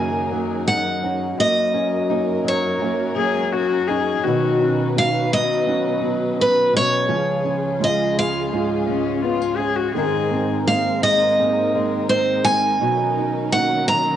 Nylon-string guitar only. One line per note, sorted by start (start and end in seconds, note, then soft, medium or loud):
0.00 1.36 F#2 medium
0.00 0.31 C#3 medium
0.00 0.31 F#3 medium
0.00 0.66 D#4 soft
0.00 1.03 F#4 medium
0.00 1.36 A#4 medium
0.31 2.44 F#3 medium
0.67 1.74 D#4 medium
1.03 2.09 F#4 medium
1.38 2.79 F#2 medium
1.74 3.53 C#4 medium
2.10 3.88 D#4 medium
2.44 3.14 F#3 medium
2.80 4.23 F#2 medium
3.16 4.23 F#3 medium
3.53 4.27 C#4 medium
3.89 4.24 D#4 medium
4.26 6.39 B2 medium
4.26 5.31 F#3 medium
4.26 4.60 D#4 medium
4.26 4.96 F#4 medium
4.26 7.07 C#5 medium
4.62 7.05 D#4 medium
4.97 7.05 F#4 medium
5.32 5.65 F#3 medium
5.66 6.00 F#3 medium
6.01 7.08 F#3 medium
6.73 7.09 B2 medium
7.09 8.52 C#3 medium
7.45 9.23 C#4 medium
7.81 9.59 F4 medium
8.17 8.87 G#3 medium
8.53 9.92 G#2 medium
8.88 9.91 G#3 medium
9.23 9.42 B3 medium
9.42 9.95 C#4 soft
9.60 9.91 F4 soft
9.95 12.77 G#2 medium
9.95 11.03 G#3 medium
9.95 10.32 C4 medium
9.95 10.68 D#4 medium
9.95 12.79 A#4 medium
10.33 12.10 C4 medium
10.69 12.46 D#4 medium
11.04 11.74 G#3 medium
11.38 12.77 D#3 medium
11.75 12.78 G#3 medium
12.11 12.78 C4 medium
12.48 13.17 D#4 soft
12.81 14.16 B2 medium
13.18 14.16 D#4 soft
13.88 14.16 F#3 medium